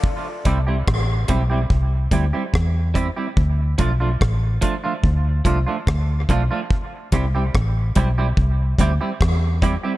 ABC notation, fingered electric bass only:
X:1
M:4/4
L:1/16
Q:1/4=72
K:C
V:1 name="Fingered electric bass" clef=bass
z2 C,,2 A,,,2 B,,,2 C,,2 D,, z E,,3 z | D,,2 B,,,2 A,,,2 z2 D,,2 C,, z D,,2 B,,, z | z2 C,,2 A,,,2 B,,,2 C,,2 D,, z E,,3 z |]